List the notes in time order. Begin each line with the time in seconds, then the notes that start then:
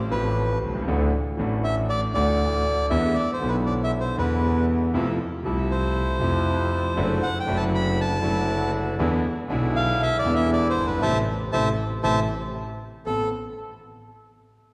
0.09 A1 A2 F3 A3 C4 B4
0.14 G4
0.63 C2
0.69 B1
0.75 C2
0.82 C#2
0.88 D2 D3 E3 A3 D4 F#4
1.37 A1 A2 E3 A3 D4 F#4
1.64 E5
1.90 D5
2.14 D2 D3 E3 A3 D4 F#4 D5
2.90 E2 D3 E3 G#3 B3 E4 E5
3.15 D5
3.33 C5
3.40 B1 B2 D3 G#3 B3 E4
3.48 B4
3.66 D5
3.84 E5
4.00 C5
4.16 E2 D3 E3 G#3 B3 B4
4.20 E4
4.94 F2 C3 F3 A3 E4 F4 A4
5.45 C2 C3 F3 A3 E4 A4
5.71 C5
6.19 F2 C3 F3 A3 E4 A4
6.96 F#1 F#2 D3 F#3 A3 D4 E4 F#4
7.23 F#5
7.40 G5
7.46 F#1 F#2 D3 F#3 A3 D4 E4 F#4
7.50 E4
7.57 A5
7.75 B5
8.01 A5
8.20 F#1 F#2 D3 F#3 A3 D4 E4 F#4
8.24 E4
8.98 E2 D3 E3 G#3 B3 D4 E4 G#4
9.48 B1 B2 D3 G#3 B3 D4 E4 G#4
9.52 E4
9.76 F5
10.02 E5
10.19 D5
10.24 E2 D3 E3 G#3 B3 D4 E4 G#4
10.35 E5
10.53 D5
10.70 C5
10.78 G1
10.83 F#1 B4
10.90 G1
10.97 G#1
11.01 A1 C3 E3 A3 C4 E4 A4 C5 E5 A5
11.52 A1 C3 E3 A3 C4 E4 A4 C5 E5 A5
12.02 A1 C3 E3 A3 C4 E4 A4 C5 E5 A5
13.05 A1 B3 C4 A4